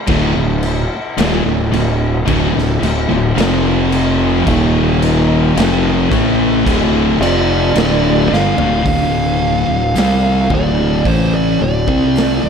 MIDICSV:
0, 0, Header, 1, 5, 480
1, 0, Start_track
1, 0, Tempo, 1096892
1, 38, Time_signature, 4, 2, 24, 8
1, 5466, End_track
2, 0, Start_track
2, 0, Title_t, "Lead electric guitar"
2, 0, Program_c, 0, 29
2, 3161, Note_on_c, 0, 74, 103
2, 3649, Note_off_c, 0, 74, 0
2, 3650, Note_on_c, 0, 77, 104
2, 3882, Note_off_c, 0, 77, 0
2, 3887, Note_on_c, 0, 77, 101
2, 4614, Note_on_c, 0, 74, 85
2, 4624, Note_off_c, 0, 77, 0
2, 4846, Note_off_c, 0, 74, 0
2, 4848, Note_on_c, 0, 72, 91
2, 4955, Note_off_c, 0, 72, 0
2, 4965, Note_on_c, 0, 74, 89
2, 5082, Note_off_c, 0, 74, 0
2, 5087, Note_on_c, 0, 74, 95
2, 5466, Note_off_c, 0, 74, 0
2, 5466, End_track
3, 0, Start_track
3, 0, Title_t, "Distorted electric guitar"
3, 0, Program_c, 1, 30
3, 35, Note_on_c, 1, 45, 94
3, 36, Note_on_c, 1, 38, 100
3, 148, Note_off_c, 1, 38, 0
3, 149, Note_off_c, 1, 45, 0
3, 154, Note_on_c, 1, 38, 74
3, 155, Note_on_c, 1, 45, 76
3, 347, Note_off_c, 1, 38, 0
3, 348, Note_off_c, 1, 45, 0
3, 513, Note_on_c, 1, 39, 92
3, 515, Note_on_c, 1, 46, 113
3, 628, Note_off_c, 1, 39, 0
3, 629, Note_off_c, 1, 46, 0
3, 634, Note_on_c, 1, 38, 71
3, 637, Note_on_c, 1, 45, 79
3, 748, Note_off_c, 1, 38, 0
3, 750, Note_off_c, 1, 45, 0
3, 753, Note_on_c, 1, 38, 64
3, 755, Note_on_c, 1, 45, 69
3, 946, Note_off_c, 1, 38, 0
3, 948, Note_off_c, 1, 45, 0
3, 995, Note_on_c, 1, 38, 84
3, 998, Note_on_c, 1, 45, 104
3, 1108, Note_off_c, 1, 38, 0
3, 1108, Note_off_c, 1, 45, 0
3, 1113, Note_on_c, 1, 38, 70
3, 1113, Note_on_c, 1, 45, 75
3, 1230, Note_off_c, 1, 38, 0
3, 1231, Note_off_c, 1, 45, 0
3, 1236, Note_on_c, 1, 38, 68
3, 1236, Note_on_c, 1, 45, 83
3, 1353, Note_off_c, 1, 38, 0
3, 1356, Note_off_c, 1, 45, 0
3, 1358, Note_on_c, 1, 38, 66
3, 1361, Note_on_c, 1, 45, 73
3, 1474, Note_off_c, 1, 38, 0
3, 1476, Note_on_c, 1, 41, 97
3, 1478, Note_off_c, 1, 45, 0
3, 1481, Note_on_c, 1, 48, 107
3, 1481, Note_on_c, 1, 53, 112
3, 1955, Note_off_c, 1, 41, 0
3, 1955, Note_off_c, 1, 48, 0
3, 1955, Note_on_c, 1, 39, 94
3, 1955, Note_on_c, 1, 46, 99
3, 1959, Note_off_c, 1, 53, 0
3, 1959, Note_on_c, 1, 51, 93
3, 2427, Note_off_c, 1, 39, 0
3, 2428, Note_off_c, 1, 46, 0
3, 2429, Note_off_c, 1, 51, 0
3, 2431, Note_on_c, 1, 41, 93
3, 2432, Note_on_c, 1, 48, 100
3, 2437, Note_on_c, 1, 53, 106
3, 2666, Note_off_c, 1, 41, 0
3, 2666, Note_off_c, 1, 48, 0
3, 2668, Note_off_c, 1, 53, 0
3, 2670, Note_on_c, 1, 45, 96
3, 2673, Note_on_c, 1, 52, 99
3, 2674, Note_on_c, 1, 57, 102
3, 2905, Note_off_c, 1, 45, 0
3, 2907, Note_off_c, 1, 52, 0
3, 2907, Note_off_c, 1, 57, 0
3, 2914, Note_on_c, 1, 38, 89
3, 2917, Note_on_c, 1, 45, 101
3, 2918, Note_on_c, 1, 50, 107
3, 3147, Note_off_c, 1, 38, 0
3, 3149, Note_off_c, 1, 45, 0
3, 3149, Note_off_c, 1, 50, 0
3, 3152, Note_on_c, 1, 41, 100
3, 3154, Note_on_c, 1, 48, 102
3, 3157, Note_on_c, 1, 53, 106
3, 3386, Note_off_c, 1, 41, 0
3, 3387, Note_off_c, 1, 48, 0
3, 3389, Note_off_c, 1, 53, 0
3, 3391, Note_on_c, 1, 38, 97
3, 3392, Note_on_c, 1, 45, 106
3, 3395, Note_on_c, 1, 50, 108
3, 3626, Note_off_c, 1, 38, 0
3, 3627, Note_off_c, 1, 45, 0
3, 3628, Note_off_c, 1, 50, 0
3, 3631, Note_on_c, 1, 43, 95
3, 3634, Note_on_c, 1, 50, 96
3, 3746, Note_off_c, 1, 43, 0
3, 3747, Note_off_c, 1, 50, 0
3, 3748, Note_on_c, 1, 38, 76
3, 3750, Note_on_c, 1, 45, 85
3, 3862, Note_off_c, 1, 38, 0
3, 3865, Note_off_c, 1, 45, 0
3, 3867, Note_on_c, 1, 38, 90
3, 3870, Note_on_c, 1, 45, 92
3, 3871, Note_on_c, 1, 50, 103
3, 4225, Note_off_c, 1, 38, 0
3, 4226, Note_off_c, 1, 45, 0
3, 4226, Note_off_c, 1, 50, 0
3, 4231, Note_on_c, 1, 38, 62
3, 4235, Note_on_c, 1, 45, 65
3, 4351, Note_off_c, 1, 38, 0
3, 4352, Note_on_c, 1, 48, 88
3, 4354, Note_off_c, 1, 45, 0
3, 4356, Note_on_c, 1, 55, 98
3, 4357, Note_on_c, 1, 60, 94
3, 4587, Note_off_c, 1, 48, 0
3, 4589, Note_off_c, 1, 55, 0
3, 4589, Note_on_c, 1, 38, 79
3, 4590, Note_off_c, 1, 60, 0
3, 4592, Note_on_c, 1, 45, 97
3, 4594, Note_on_c, 1, 50, 93
3, 4826, Note_off_c, 1, 38, 0
3, 4828, Note_off_c, 1, 45, 0
3, 4829, Note_off_c, 1, 50, 0
3, 4833, Note_on_c, 1, 45, 80
3, 4834, Note_on_c, 1, 52, 101
3, 4837, Note_on_c, 1, 57, 89
3, 5069, Note_off_c, 1, 45, 0
3, 5070, Note_off_c, 1, 52, 0
3, 5071, Note_off_c, 1, 57, 0
3, 5074, Note_on_c, 1, 38, 62
3, 5076, Note_on_c, 1, 45, 80
3, 5192, Note_off_c, 1, 38, 0
3, 5194, Note_off_c, 1, 45, 0
3, 5194, Note_on_c, 1, 48, 87
3, 5196, Note_on_c, 1, 55, 90
3, 5200, Note_on_c, 1, 60, 102
3, 5430, Note_off_c, 1, 48, 0
3, 5431, Note_off_c, 1, 55, 0
3, 5433, Note_off_c, 1, 60, 0
3, 5436, Note_on_c, 1, 38, 62
3, 5436, Note_on_c, 1, 45, 63
3, 5466, Note_off_c, 1, 38, 0
3, 5466, Note_off_c, 1, 45, 0
3, 5466, End_track
4, 0, Start_track
4, 0, Title_t, "Fingered electric bass"
4, 0, Program_c, 2, 33
4, 36, Note_on_c, 2, 26, 101
4, 149, Note_off_c, 2, 26, 0
4, 164, Note_on_c, 2, 26, 81
4, 384, Note_off_c, 2, 26, 0
4, 517, Note_on_c, 2, 27, 105
4, 629, Note_off_c, 2, 27, 0
4, 637, Note_on_c, 2, 26, 83
4, 749, Note_off_c, 2, 26, 0
4, 756, Note_on_c, 2, 26, 85
4, 979, Note_off_c, 2, 26, 0
4, 999, Note_on_c, 2, 26, 91
4, 1109, Note_off_c, 2, 26, 0
4, 1122, Note_on_c, 2, 26, 77
4, 1231, Note_off_c, 2, 26, 0
4, 1235, Note_on_c, 2, 26, 86
4, 1347, Note_off_c, 2, 26, 0
4, 1358, Note_on_c, 2, 26, 84
4, 1468, Note_off_c, 2, 26, 0
4, 1473, Note_on_c, 2, 29, 102
4, 1936, Note_off_c, 2, 29, 0
4, 1956, Note_on_c, 2, 27, 98
4, 2417, Note_off_c, 2, 27, 0
4, 2436, Note_on_c, 2, 29, 94
4, 2658, Note_off_c, 2, 29, 0
4, 2679, Note_on_c, 2, 33, 98
4, 2900, Note_off_c, 2, 33, 0
4, 2917, Note_on_c, 2, 26, 88
4, 3139, Note_off_c, 2, 26, 0
4, 3150, Note_on_c, 2, 29, 104
4, 3376, Note_off_c, 2, 29, 0
4, 3395, Note_on_c, 2, 26, 100
4, 3618, Note_off_c, 2, 26, 0
4, 3636, Note_on_c, 2, 31, 100
4, 3747, Note_off_c, 2, 31, 0
4, 3754, Note_on_c, 2, 26, 92
4, 3867, Note_off_c, 2, 26, 0
4, 3877, Note_on_c, 2, 26, 89
4, 4219, Note_off_c, 2, 26, 0
4, 4238, Note_on_c, 2, 26, 75
4, 4349, Note_off_c, 2, 26, 0
4, 4359, Note_on_c, 2, 36, 94
4, 4581, Note_off_c, 2, 36, 0
4, 4595, Note_on_c, 2, 26, 96
4, 4820, Note_off_c, 2, 26, 0
4, 4836, Note_on_c, 2, 33, 89
4, 5061, Note_off_c, 2, 33, 0
4, 5082, Note_on_c, 2, 26, 83
4, 5192, Note_off_c, 2, 26, 0
4, 5196, Note_on_c, 2, 36, 99
4, 5421, Note_off_c, 2, 36, 0
4, 5445, Note_on_c, 2, 26, 76
4, 5466, Note_off_c, 2, 26, 0
4, 5466, End_track
5, 0, Start_track
5, 0, Title_t, "Drums"
5, 32, Note_on_c, 9, 49, 77
5, 36, Note_on_c, 9, 36, 106
5, 76, Note_off_c, 9, 49, 0
5, 80, Note_off_c, 9, 36, 0
5, 274, Note_on_c, 9, 49, 58
5, 318, Note_off_c, 9, 49, 0
5, 515, Note_on_c, 9, 49, 84
5, 528, Note_on_c, 9, 38, 111
5, 559, Note_off_c, 9, 49, 0
5, 571, Note_off_c, 9, 38, 0
5, 759, Note_on_c, 9, 49, 55
5, 803, Note_off_c, 9, 49, 0
5, 995, Note_on_c, 9, 49, 74
5, 997, Note_on_c, 9, 36, 101
5, 1039, Note_off_c, 9, 49, 0
5, 1040, Note_off_c, 9, 36, 0
5, 1131, Note_on_c, 9, 38, 34
5, 1175, Note_off_c, 9, 38, 0
5, 1239, Note_on_c, 9, 49, 66
5, 1282, Note_off_c, 9, 49, 0
5, 1478, Note_on_c, 9, 49, 75
5, 1491, Note_on_c, 9, 38, 96
5, 1522, Note_off_c, 9, 49, 0
5, 1534, Note_off_c, 9, 38, 0
5, 1716, Note_on_c, 9, 49, 64
5, 1760, Note_off_c, 9, 49, 0
5, 1955, Note_on_c, 9, 36, 102
5, 1956, Note_on_c, 9, 49, 84
5, 1999, Note_off_c, 9, 36, 0
5, 2000, Note_off_c, 9, 49, 0
5, 2198, Note_on_c, 9, 49, 65
5, 2242, Note_off_c, 9, 49, 0
5, 2439, Note_on_c, 9, 49, 90
5, 2451, Note_on_c, 9, 38, 117
5, 2483, Note_off_c, 9, 49, 0
5, 2495, Note_off_c, 9, 38, 0
5, 2676, Note_on_c, 9, 36, 103
5, 2681, Note_on_c, 9, 49, 65
5, 2720, Note_off_c, 9, 36, 0
5, 2724, Note_off_c, 9, 49, 0
5, 2917, Note_on_c, 9, 36, 96
5, 2919, Note_on_c, 9, 49, 76
5, 2961, Note_off_c, 9, 36, 0
5, 2963, Note_off_c, 9, 49, 0
5, 3162, Note_on_c, 9, 49, 73
5, 3205, Note_off_c, 9, 49, 0
5, 3393, Note_on_c, 9, 49, 74
5, 3406, Note_on_c, 9, 38, 99
5, 3437, Note_off_c, 9, 49, 0
5, 3449, Note_off_c, 9, 38, 0
5, 3648, Note_on_c, 9, 38, 64
5, 3692, Note_off_c, 9, 38, 0
5, 3756, Note_on_c, 9, 43, 100
5, 3799, Note_off_c, 9, 43, 0
5, 3876, Note_on_c, 9, 36, 97
5, 3876, Note_on_c, 9, 46, 52
5, 3920, Note_off_c, 9, 36, 0
5, 3920, Note_off_c, 9, 46, 0
5, 4356, Note_on_c, 9, 46, 54
5, 4368, Note_on_c, 9, 38, 113
5, 4400, Note_off_c, 9, 46, 0
5, 4412, Note_off_c, 9, 38, 0
5, 4596, Note_on_c, 9, 36, 106
5, 4640, Note_off_c, 9, 36, 0
5, 4837, Note_on_c, 9, 36, 96
5, 4837, Note_on_c, 9, 46, 49
5, 4881, Note_off_c, 9, 36, 0
5, 4881, Note_off_c, 9, 46, 0
5, 5198, Note_on_c, 9, 36, 102
5, 5242, Note_off_c, 9, 36, 0
5, 5320, Note_on_c, 9, 46, 52
5, 5332, Note_on_c, 9, 38, 102
5, 5363, Note_off_c, 9, 46, 0
5, 5376, Note_off_c, 9, 38, 0
5, 5466, End_track
0, 0, End_of_file